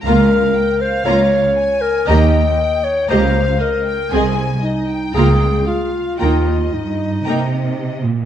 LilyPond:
<<
  \new Staff \with { instrumentName = "Violin section" } { \time 4/4 \key ees \mixolydian \tempo 4 = 116 <f'' bes''>8 r4. <f'' bes''>8 r4. | <ees'' bes''>8 r4. <ees'' bes''>8 r4. | <ees'' aes''>8 r4. <f'' bes''>8 r4. | <g'' bes''>8 r4. <g'' bes''>8 r4. | }
  \new Staff \with { instrumentName = "Violin section" } { \time 4/4 \key ees \mixolydian f''4 g''8 f''4. aes''4 | g''2 f''4 ees''8 g''8 | aes''4 ees''8 g''4. f''4 | ees''2.~ ees''8 r8 | }
  \new Staff \with { instrumentName = "Clarinet" } { \time 4/4 \key ees \mixolydian bes'4. c''8 des''4. bes'8 | ees''4. des''8 c''4 bes'4 | r4 ees'4 aes'4 f'4 | f'4 ees'2~ ees'8 r8 | }
  \new Staff \with { instrumentName = "Viola section" } { \time 4/4 \key ees \mixolydian <bes f'>8 r4. <bes f'>8 r4. | <bes g'>8 r4. <bes g'>8 r4. | <c' aes'>8 r4. <bes f'>8 r4. | <bes ees'>8 r4. <bes ees'>8 r4. | }
  \new Staff \with { instrumentName = "Cello section" } { \clef bass \time 4/4 \key ees \mixolydian des,4 r4 des,4 r4 | ees,4 r4 des,4 r4 | c,4 r4 des,4 r4 | ees,4 g,4 c4. bes,8 | }
  \new Staff \with { instrumentName = "Double bass section" } { \clef bass \time 4/4 \key ees \mixolydian des,4 r2. | ees,4 r4 des,4 r4 | c,4 r4 des,4 r4 | ees,4 r2. | }
>>